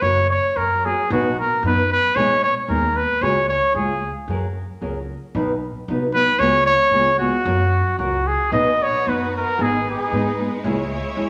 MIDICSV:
0, 0, Header, 1, 5, 480
1, 0, Start_track
1, 0, Key_signature, 6, "major"
1, 0, Tempo, 531444
1, 17, Time_signature, 2, 2, 24, 8
1, 10201, End_track
2, 0, Start_track
2, 0, Title_t, "Trumpet"
2, 0, Program_c, 0, 56
2, 13, Note_on_c, 0, 73, 99
2, 264, Note_off_c, 0, 73, 0
2, 272, Note_on_c, 0, 73, 87
2, 510, Note_on_c, 0, 70, 76
2, 524, Note_off_c, 0, 73, 0
2, 770, Note_on_c, 0, 68, 92
2, 783, Note_off_c, 0, 70, 0
2, 1000, Note_off_c, 0, 68, 0
2, 1009, Note_on_c, 0, 66, 72
2, 1227, Note_off_c, 0, 66, 0
2, 1258, Note_on_c, 0, 70, 78
2, 1465, Note_off_c, 0, 70, 0
2, 1499, Note_on_c, 0, 71, 82
2, 1708, Note_off_c, 0, 71, 0
2, 1732, Note_on_c, 0, 71, 102
2, 1947, Note_on_c, 0, 73, 96
2, 1961, Note_off_c, 0, 71, 0
2, 2184, Note_off_c, 0, 73, 0
2, 2197, Note_on_c, 0, 73, 91
2, 2299, Note_off_c, 0, 73, 0
2, 2429, Note_on_c, 0, 70, 76
2, 2674, Note_on_c, 0, 71, 83
2, 2688, Note_off_c, 0, 70, 0
2, 2908, Note_on_c, 0, 73, 86
2, 2922, Note_off_c, 0, 71, 0
2, 3137, Note_off_c, 0, 73, 0
2, 3143, Note_on_c, 0, 73, 86
2, 3361, Note_off_c, 0, 73, 0
2, 3389, Note_on_c, 0, 68, 64
2, 3721, Note_off_c, 0, 68, 0
2, 5545, Note_on_c, 0, 71, 104
2, 5771, Note_on_c, 0, 73, 111
2, 5784, Note_off_c, 0, 71, 0
2, 6006, Note_off_c, 0, 73, 0
2, 6014, Note_on_c, 0, 73, 99
2, 6454, Note_off_c, 0, 73, 0
2, 6489, Note_on_c, 0, 66, 82
2, 7173, Note_off_c, 0, 66, 0
2, 7206, Note_on_c, 0, 66, 72
2, 7470, Note_on_c, 0, 68, 81
2, 7483, Note_off_c, 0, 66, 0
2, 7693, Note_off_c, 0, 68, 0
2, 7698, Note_on_c, 0, 75, 90
2, 7969, Note_on_c, 0, 73, 89
2, 7982, Note_off_c, 0, 75, 0
2, 8206, Note_on_c, 0, 71, 73
2, 8219, Note_off_c, 0, 73, 0
2, 8438, Note_off_c, 0, 71, 0
2, 8464, Note_on_c, 0, 70, 81
2, 8689, Note_on_c, 0, 68, 90
2, 8703, Note_off_c, 0, 70, 0
2, 8920, Note_off_c, 0, 68, 0
2, 8942, Note_on_c, 0, 68, 67
2, 9369, Note_off_c, 0, 68, 0
2, 10201, End_track
3, 0, Start_track
3, 0, Title_t, "Violin section"
3, 0, Program_c, 1, 48
3, 7695, Note_on_c, 1, 63, 51
3, 7697, Note_on_c, 1, 66, 59
3, 7706, Note_on_c, 1, 71, 60
3, 8655, Note_off_c, 1, 63, 0
3, 8656, Note_off_c, 1, 66, 0
3, 8660, Note_off_c, 1, 71, 0
3, 8672, Note_on_c, 1, 63, 55
3, 8673, Note_on_c, 1, 71, 66
3, 8681, Note_on_c, 1, 56, 62
3, 9613, Note_off_c, 1, 63, 0
3, 9613, Note_on_c, 1, 64, 55
3, 9613, Note_on_c, 1, 73, 76
3, 9614, Note_off_c, 1, 71, 0
3, 10201, Note_off_c, 1, 56, 0
3, 10201, Note_off_c, 1, 64, 0
3, 10201, Note_off_c, 1, 73, 0
3, 10201, End_track
4, 0, Start_track
4, 0, Title_t, "Nylon-string guitar"
4, 0, Program_c, 2, 24
4, 13, Note_on_c, 2, 54, 49
4, 14, Note_on_c, 2, 61, 58
4, 20, Note_on_c, 2, 66, 51
4, 20, Note_on_c, 2, 70, 49
4, 165, Note_off_c, 2, 54, 0
4, 165, Note_off_c, 2, 61, 0
4, 168, Note_off_c, 2, 66, 0
4, 168, Note_off_c, 2, 70, 0
4, 516, Note_on_c, 2, 54, 43
4, 519, Note_on_c, 2, 61, 46
4, 524, Note_on_c, 2, 70, 52
4, 525, Note_on_c, 2, 66, 52
4, 660, Note_off_c, 2, 54, 0
4, 662, Note_off_c, 2, 61, 0
4, 664, Note_off_c, 2, 70, 0
4, 665, Note_off_c, 2, 66, 0
4, 764, Note_on_c, 2, 54, 40
4, 768, Note_on_c, 2, 61, 45
4, 774, Note_on_c, 2, 66, 42
4, 779, Note_on_c, 2, 70, 52
4, 903, Note_off_c, 2, 54, 0
4, 904, Note_off_c, 2, 61, 0
4, 908, Note_off_c, 2, 66, 0
4, 910, Note_off_c, 2, 70, 0
4, 996, Note_on_c, 2, 47, 56
4, 1004, Note_on_c, 2, 51, 56
4, 1005, Note_on_c, 2, 54, 62
4, 1005, Note_on_c, 2, 59, 65
4, 1007, Note_on_c, 2, 63, 65
4, 1007, Note_on_c, 2, 71, 63
4, 1140, Note_off_c, 2, 47, 0
4, 1144, Note_off_c, 2, 51, 0
4, 1144, Note_off_c, 2, 54, 0
4, 1145, Note_off_c, 2, 59, 0
4, 1146, Note_off_c, 2, 63, 0
4, 1146, Note_off_c, 2, 71, 0
4, 1486, Note_on_c, 2, 54, 57
4, 1490, Note_on_c, 2, 59, 55
4, 1496, Note_on_c, 2, 63, 62
4, 1500, Note_on_c, 2, 71, 55
4, 1622, Note_off_c, 2, 54, 0
4, 1624, Note_off_c, 2, 59, 0
4, 1627, Note_off_c, 2, 63, 0
4, 1629, Note_off_c, 2, 71, 0
4, 1950, Note_on_c, 2, 47, 44
4, 1954, Note_on_c, 2, 51, 64
4, 1955, Note_on_c, 2, 56, 66
4, 1956, Note_on_c, 2, 59, 60
4, 1958, Note_on_c, 2, 63, 61
4, 1960, Note_on_c, 2, 68, 83
4, 2090, Note_off_c, 2, 47, 0
4, 2092, Note_off_c, 2, 51, 0
4, 2092, Note_off_c, 2, 56, 0
4, 2093, Note_off_c, 2, 59, 0
4, 2094, Note_off_c, 2, 63, 0
4, 2094, Note_off_c, 2, 68, 0
4, 2420, Note_on_c, 2, 56, 61
4, 2430, Note_on_c, 2, 59, 46
4, 2435, Note_on_c, 2, 63, 51
4, 2439, Note_on_c, 2, 68, 57
4, 2564, Note_off_c, 2, 56, 0
4, 2568, Note_off_c, 2, 59, 0
4, 2571, Note_off_c, 2, 63, 0
4, 2573, Note_off_c, 2, 68, 0
4, 2906, Note_on_c, 2, 49, 45
4, 2910, Note_on_c, 2, 61, 56
4, 2915, Note_on_c, 2, 56, 56
4, 2917, Note_on_c, 2, 68, 68
4, 2919, Note_on_c, 2, 66, 59
4, 3046, Note_off_c, 2, 49, 0
4, 3047, Note_off_c, 2, 61, 0
4, 3050, Note_off_c, 2, 56, 0
4, 3051, Note_off_c, 2, 68, 0
4, 3052, Note_off_c, 2, 66, 0
4, 3396, Note_on_c, 2, 56, 42
4, 3406, Note_on_c, 2, 61, 43
4, 3410, Note_on_c, 2, 65, 53
4, 3415, Note_on_c, 2, 68, 47
4, 3532, Note_off_c, 2, 56, 0
4, 3537, Note_off_c, 2, 61, 0
4, 3539, Note_off_c, 2, 65, 0
4, 3542, Note_off_c, 2, 68, 0
4, 3879, Note_on_c, 2, 54, 71
4, 3884, Note_on_c, 2, 61, 52
4, 3886, Note_on_c, 2, 70, 69
4, 3887, Note_on_c, 2, 68, 66
4, 4015, Note_off_c, 2, 54, 0
4, 4018, Note_off_c, 2, 61, 0
4, 4018, Note_off_c, 2, 70, 0
4, 4019, Note_off_c, 2, 68, 0
4, 4344, Note_on_c, 2, 54, 52
4, 4353, Note_on_c, 2, 68, 60
4, 4356, Note_on_c, 2, 61, 49
4, 4357, Note_on_c, 2, 70, 60
4, 4490, Note_off_c, 2, 54, 0
4, 4495, Note_off_c, 2, 68, 0
4, 4496, Note_off_c, 2, 61, 0
4, 4496, Note_off_c, 2, 70, 0
4, 4829, Note_on_c, 2, 47, 56
4, 4834, Note_on_c, 2, 54, 64
4, 4835, Note_on_c, 2, 51, 68
4, 4836, Note_on_c, 2, 63, 68
4, 4842, Note_on_c, 2, 59, 59
4, 4843, Note_on_c, 2, 71, 73
4, 4971, Note_off_c, 2, 47, 0
4, 4974, Note_off_c, 2, 51, 0
4, 4974, Note_off_c, 2, 54, 0
4, 4974, Note_off_c, 2, 63, 0
4, 4977, Note_off_c, 2, 59, 0
4, 4978, Note_off_c, 2, 71, 0
4, 5313, Note_on_c, 2, 54, 65
4, 5322, Note_on_c, 2, 59, 56
4, 5328, Note_on_c, 2, 63, 60
4, 5337, Note_on_c, 2, 71, 54
4, 5448, Note_off_c, 2, 54, 0
4, 5453, Note_off_c, 2, 59, 0
4, 5455, Note_off_c, 2, 63, 0
4, 5460, Note_off_c, 2, 71, 0
4, 5543, Note_on_c, 2, 54, 54
4, 5548, Note_on_c, 2, 59, 54
4, 5554, Note_on_c, 2, 63, 53
4, 5677, Note_off_c, 2, 54, 0
4, 5680, Note_off_c, 2, 59, 0
4, 5683, Note_off_c, 2, 63, 0
4, 5774, Note_on_c, 2, 56, 51
4, 5776, Note_on_c, 2, 66, 57
4, 5779, Note_on_c, 2, 49, 68
4, 5780, Note_on_c, 2, 68, 74
4, 5784, Note_on_c, 2, 59, 53
4, 5912, Note_off_c, 2, 56, 0
4, 5913, Note_off_c, 2, 66, 0
4, 5915, Note_off_c, 2, 49, 0
4, 5915, Note_off_c, 2, 68, 0
4, 5917, Note_off_c, 2, 59, 0
4, 6247, Note_on_c, 2, 56, 53
4, 6254, Note_on_c, 2, 59, 56
4, 6262, Note_on_c, 2, 65, 55
4, 6264, Note_on_c, 2, 68, 68
4, 6389, Note_off_c, 2, 56, 0
4, 6392, Note_off_c, 2, 59, 0
4, 6396, Note_off_c, 2, 65, 0
4, 6397, Note_off_c, 2, 68, 0
4, 6493, Note_on_c, 2, 56, 47
4, 6500, Note_on_c, 2, 59, 60
4, 6505, Note_on_c, 2, 65, 50
4, 6507, Note_on_c, 2, 68, 55
4, 6630, Note_off_c, 2, 56, 0
4, 6634, Note_off_c, 2, 59, 0
4, 6636, Note_off_c, 2, 65, 0
4, 6637, Note_off_c, 2, 68, 0
4, 6733, Note_on_c, 2, 54, 55
4, 6737, Note_on_c, 2, 61, 68
4, 6742, Note_on_c, 2, 66, 59
4, 6744, Note_on_c, 2, 70, 58
4, 6874, Note_off_c, 2, 54, 0
4, 6876, Note_off_c, 2, 61, 0
4, 6878, Note_off_c, 2, 66, 0
4, 6879, Note_off_c, 2, 70, 0
4, 7207, Note_on_c, 2, 54, 51
4, 7215, Note_on_c, 2, 66, 56
4, 7216, Note_on_c, 2, 61, 52
4, 7220, Note_on_c, 2, 70, 60
4, 7355, Note_off_c, 2, 54, 0
4, 7359, Note_off_c, 2, 61, 0
4, 7359, Note_off_c, 2, 66, 0
4, 7361, Note_off_c, 2, 70, 0
4, 7687, Note_on_c, 2, 47, 46
4, 7687, Note_on_c, 2, 51, 54
4, 7687, Note_on_c, 2, 54, 56
4, 7693, Note_on_c, 2, 59, 49
4, 7694, Note_on_c, 2, 71, 67
4, 7696, Note_on_c, 2, 63, 68
4, 7838, Note_off_c, 2, 47, 0
4, 7838, Note_off_c, 2, 51, 0
4, 7838, Note_off_c, 2, 54, 0
4, 7841, Note_off_c, 2, 59, 0
4, 7842, Note_off_c, 2, 71, 0
4, 7843, Note_off_c, 2, 63, 0
4, 8176, Note_on_c, 2, 54, 48
4, 8179, Note_on_c, 2, 59, 52
4, 8195, Note_on_c, 2, 63, 44
4, 8196, Note_on_c, 2, 71, 46
4, 8325, Note_off_c, 2, 54, 0
4, 8327, Note_off_c, 2, 59, 0
4, 8335, Note_off_c, 2, 63, 0
4, 8336, Note_off_c, 2, 71, 0
4, 8653, Note_on_c, 2, 51, 64
4, 8658, Note_on_c, 2, 59, 55
4, 8659, Note_on_c, 2, 44, 45
4, 8660, Note_on_c, 2, 63, 55
4, 8660, Note_on_c, 2, 68, 69
4, 8661, Note_on_c, 2, 56, 57
4, 8804, Note_off_c, 2, 51, 0
4, 8807, Note_off_c, 2, 44, 0
4, 8807, Note_off_c, 2, 59, 0
4, 8808, Note_off_c, 2, 56, 0
4, 8808, Note_off_c, 2, 63, 0
4, 8808, Note_off_c, 2, 68, 0
4, 9145, Note_on_c, 2, 56, 43
4, 9146, Note_on_c, 2, 59, 57
4, 9153, Note_on_c, 2, 63, 57
4, 9156, Note_on_c, 2, 68, 62
4, 9288, Note_off_c, 2, 56, 0
4, 9289, Note_off_c, 2, 59, 0
4, 9292, Note_off_c, 2, 63, 0
4, 9294, Note_off_c, 2, 68, 0
4, 9380, Note_on_c, 2, 56, 49
4, 9382, Note_on_c, 2, 59, 45
4, 9389, Note_on_c, 2, 63, 55
4, 9392, Note_on_c, 2, 68, 46
4, 9523, Note_off_c, 2, 56, 0
4, 9524, Note_off_c, 2, 59, 0
4, 9527, Note_off_c, 2, 63, 0
4, 9529, Note_off_c, 2, 68, 0
4, 9615, Note_on_c, 2, 56, 67
4, 9618, Note_on_c, 2, 64, 78
4, 9621, Note_on_c, 2, 49, 59
4, 9621, Note_on_c, 2, 61, 61
4, 9629, Note_on_c, 2, 68, 75
4, 9761, Note_off_c, 2, 56, 0
4, 9763, Note_off_c, 2, 64, 0
4, 9764, Note_off_c, 2, 49, 0
4, 9764, Note_off_c, 2, 61, 0
4, 9768, Note_off_c, 2, 68, 0
4, 10079, Note_on_c, 2, 56, 55
4, 10091, Note_on_c, 2, 61, 51
4, 10094, Note_on_c, 2, 68, 60
4, 10096, Note_on_c, 2, 64, 64
4, 10201, Note_off_c, 2, 56, 0
4, 10201, Note_off_c, 2, 61, 0
4, 10201, Note_off_c, 2, 64, 0
4, 10201, Note_off_c, 2, 68, 0
4, 10201, End_track
5, 0, Start_track
5, 0, Title_t, "Upright bass"
5, 0, Program_c, 3, 32
5, 19, Note_on_c, 3, 30, 88
5, 338, Note_off_c, 3, 30, 0
5, 508, Note_on_c, 3, 42, 66
5, 823, Note_off_c, 3, 42, 0
5, 997, Note_on_c, 3, 35, 91
5, 1306, Note_off_c, 3, 35, 0
5, 1470, Note_on_c, 3, 42, 79
5, 1777, Note_off_c, 3, 42, 0
5, 1949, Note_on_c, 3, 35, 83
5, 2255, Note_off_c, 3, 35, 0
5, 2425, Note_on_c, 3, 39, 72
5, 2732, Note_off_c, 3, 39, 0
5, 2902, Note_on_c, 3, 37, 84
5, 3212, Note_off_c, 3, 37, 0
5, 3382, Note_on_c, 3, 37, 73
5, 3693, Note_off_c, 3, 37, 0
5, 3863, Note_on_c, 3, 42, 68
5, 4176, Note_off_c, 3, 42, 0
5, 4350, Note_on_c, 3, 37, 59
5, 4660, Note_off_c, 3, 37, 0
5, 4829, Note_on_c, 3, 35, 82
5, 5135, Note_off_c, 3, 35, 0
5, 5313, Note_on_c, 3, 36, 80
5, 5612, Note_off_c, 3, 36, 0
5, 5769, Note_on_c, 3, 37, 91
5, 6076, Note_off_c, 3, 37, 0
5, 6240, Note_on_c, 3, 37, 83
5, 6553, Note_off_c, 3, 37, 0
5, 6733, Note_on_c, 3, 42, 97
5, 7044, Note_off_c, 3, 42, 0
5, 7214, Note_on_c, 3, 37, 77
5, 7528, Note_off_c, 3, 37, 0
5, 7698, Note_on_c, 3, 35, 89
5, 8013, Note_off_c, 3, 35, 0
5, 8191, Note_on_c, 3, 42, 59
5, 8502, Note_off_c, 3, 42, 0
5, 8661, Note_on_c, 3, 32, 74
5, 8973, Note_off_c, 3, 32, 0
5, 9139, Note_on_c, 3, 44, 75
5, 9450, Note_off_c, 3, 44, 0
5, 9611, Note_on_c, 3, 37, 87
5, 9923, Note_off_c, 3, 37, 0
5, 10089, Note_on_c, 3, 40, 71
5, 10201, Note_off_c, 3, 40, 0
5, 10201, End_track
0, 0, End_of_file